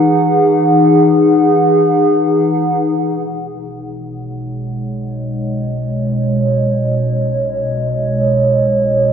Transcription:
Already playing: E3 D#4 G#4 F#5
2.97 B1 B2
3.60 C#5
3.80 G#3
4.45 D#5

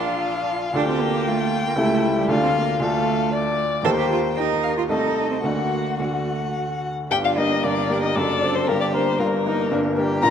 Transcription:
Already playing: A#1 D4 F4 A#4
0.00 F5
0.73 D2 D4 F4 G4 A4 G5
0.89 C4
1.01 A#3
1.27 A3 F4
1.66 A#3
1.76 C#2 A3 E4 G4 A4
2.17 G3
2.28 D2 A3 D4 F4 A4 F5
2.44 C4
2.56 A#3
2.80 D2 A3 D4 F4 A4 F5
3.32 D5
3.83 D#2 A#3 D#4 G4 A4 C5 G5
3.99 G4
4.11 F4
4.36 D#4 A#4 G5
4.63 F5
4.77 F4
4.89 C2 A3 D#4 A4 D#5
5.18 D#5
5.31 C4
5.43 D2 A3 A#3 D4 F#4 F#5
5.99 D2 A3 D4 F#4 F#5
6.08 A#3
6.16 A3
7.11 G1 G2 D4 G4 G5
7.25 F4 F5
7.37 A#3 D4 D#4 G4 D#5
7.62 G1 G2 D4 A#4 D5
7.89 A#3 D4 G4
8.03 D#4 D#5
8.15 F#1 F#2 D4 A4 D5
8.42 C4 D4 A4
8.55 C4 C5
8.67 G1 G2 A#3 G4 A#4
8.81 D4 D5
8.93 A#3 C4 D4 A#4 C5
9.19 G1 G2 A#3 F4 A#4
9.46 A#3 D4 D#4 A#4
9.71 G1 G2 D4
9.97 A#3 D4 G4 A#4
10.22 A#1 A#2 F4 A#4 A#5

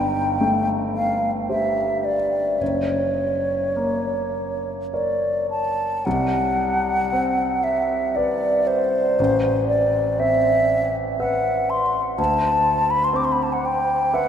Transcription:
Already playing: G1 G5
0.41 A3
0.96 F5
1.49 G4 C5 E5
2.05 D5
2.61 F#1 C#5
3.76 A#3
4.93 A#4 C#5 D5
5.50 A5
6.05 C2 F#5
7.13 C4
7.64 E5
8.16 B4 D5
8.67 C5
9.19 A1
9.68 D5
10.20 C4 E5
11.20 B4 E5 F#5
11.70 C6
12.18 D2 A5
12.90 B5
13.04 C6
13.13 C4 D6
13.25 C6
13.32 B5
13.43 A5
13.53 F#5
13.65 G5
14.13 B4 E5 F#5

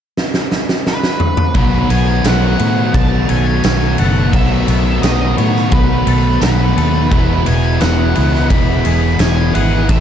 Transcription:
0.17 snare
0.34 snare
0.52 snare
0.69 snare
0.87 B4, snare
1.03 snare
1.20 mid tom
1.37 mid tom
1.54 B1 B2 D#3 F#3 A3 B3 D#4 F#4 B4, kick, ride
1.58 B3
1.89 B1 A3 B3 F#4 G#5, ride
1.93 F#3
2.24 B1 B2 D#3 F#3 A3 B3 F#4 F#5, snare, ride, tambourine
2.59 A2 F#3 A3 B3 F#4, ride
2.94 B1 B2 F#3 B3 A5, kick, ride
3.28 B1 F#3 B3 A4 G#5, ride
3.63 B1 B2 D#3 F#3 A3 B3 F#4, snare, ride, tambourine
3.98 F#1 F#3 A3 B3 F#4 A4 F#5, ride
4.32 B1 B2 D#3 F#3 A3 B3 D#4 F#4 E5, kick, ride
4.68 B1 F#3 A3 B3 F#4, ride
5.02 B1 B2 D#3 F#3 A3 B3 F#4 D#5, snare, ride, tambourine
5.37 A2 F#3 A3 B3 F#4 C#5, ride
5.56 snare
5.71 B1 B2 F#3 B3 B4, kick, ride
6.07 B1 F#3 B3 A4, ride
6.41 B1 B2 D#3 F#3 A3 B3 F#4 B4, snare, ride, tambourine
6.76 D#2 F#3 A3 B3 F#4 A4, ride
7.11 E1 E2 B2 E3 F#3 G#3 B3 E4 B4, kick, ride
7.45 E1 B2 E3 G#3 B3 E4 G#5, ride
7.80 E1 E2 B2 E3 F#3 G#3 B3 E4 F#5, snare, ride, tambourine
8.15 C#2 B2 E3 G#3 B3 E4, ride
8.34 snare
8.50 E1 E2 B2 E3 B5, kick, ride
8.85 E1 B2 E3 G#4, ride
9.19 E1 E2 B2 E3 G#3 B3 E4 G#5, snare, ride, tambourine
9.54 G#1 B2 E3 G#3 B3 E4 G#4 F#5, ride
9.89 A1 A2 E3 A3 C4 E4 E5, kick, ride

